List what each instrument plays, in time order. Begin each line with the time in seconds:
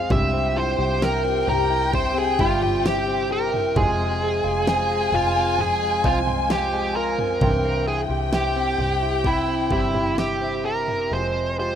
Already playing: clean electric guitar F2 G#3 C4 G#4, grand piano G#3 C4 F4 G#4, lead electric guitar F5, ambient pad C6
0.09 fingered electric bass C2, grand piano G2 G3 C4 E4 G4, clean electric guitar C3, ambient pad G4 E5, lead electric guitar E5, violin section G5, kick, floor tom
0.33 clean electric guitar C4
0.56 clean electric guitar E4, lead electric guitar C5
0.79 fingered electric bass C2, clean electric guitar G4
1.02 clean electric guitar E4, lead electric guitar A#4, snare
1.24 clean electric guitar C4
1.47 fingered electric bass C2, clean electric guitar G4, lead electric guitar A#4, floor tom
1.70 clean electric guitar E4
1.92 clean electric guitar C3, lead electric guitar C5, kick, floor tom
2.15 clean electric guitar C4, lead electric guitar G#4
2.39 fingered electric bass G1, grand piano G3 C4 G4 E5, lead electric guitar F4, kick
2.62 clean electric guitar G4, floor tom
2.84 clean electric guitar E4, lead electric guitar G4, snare
3.08 clean electric guitar C4
3.31 clean electric guitar G4, lead electric guitar A#4
3.53 clean electric guitar E4, floor tom
3.76 fingered electric bass F1, clean electric guitar F2, grand piano C3 G#3 C4 F4 G#4, ambient pad G#3 F5 C6, lead electric guitar G#4, violin section G#5, kick, floor tom
3.99 clean electric guitar G#3
4.22 clean electric guitar C4
4.44 fingered electric bass F1, clean electric guitar F4
4.67 clean electric guitar C4, lead electric guitar G#4, snare
4.90 clean electric guitar G#3
5.12 fingered electric bass F1, clean electric guitar F4, lead electric guitar F4, floor tom
5.36 clean electric guitar C4
5.59 clean electric guitar F2, lead electric guitar G#4, floor tom
5.82 clean electric guitar G#3
6.04 fingered electric bass C2, grand piano G#3 C4 F4 C5, clean electric guitar C4, lead electric guitar F4, kick
6.27 clean electric guitar F4, floor tom
6.50 clean electric guitar C4, lead electric guitar G4, snare
6.74 clean electric guitar G#3
6.96 clean electric guitar F4, lead electric guitar A#4
7.19 clean electric guitar C4, floor tom
7.41 fingered electric bass C2, grand piano G2 E3 C4 E4 G5, clean electric guitar C3, ambient pad E5 G5, violin section G5, kick, floor tom
7.65 clean electric guitar C4
7.87 clean electric guitar E4, lead electric guitar G#4
8.10 fingered electric bass C2, clean electric guitar G4
8.33 clean electric guitar E4, lead electric guitar G4, snare
8.56 clean electric guitar C4
8.78 fingered electric bass C2, clean electric guitar G4, floor tom
9.02 clean electric guitar E4
9.24 clean electric guitar C3, lead electric guitar E4, kick, floor tom
9.48 clean electric guitar C4
9.71 fingered electric bass G1, grand piano G3 C4 E4 G4, clean electric guitar E4, lead electric guitar E4, kick
9.94 clean electric guitar G4, floor tom
10.17 clean electric guitar E4, lead electric guitar G4, violin section E5, snare
10.41 clean electric guitar C4
10.65 clean electric guitar G4, lead electric guitar A#4
10.88 clean electric guitar E4, floor tom
11.11 fingered electric bass F1, clean electric guitar F2, grand piano C3 G#3 C4 F4 G#4, lead electric guitar C5
11.36 clean electric guitar G#3
11.58 grand piano G#3 C4 F4 G4, clean electric guitar F4, lead electric guitar C5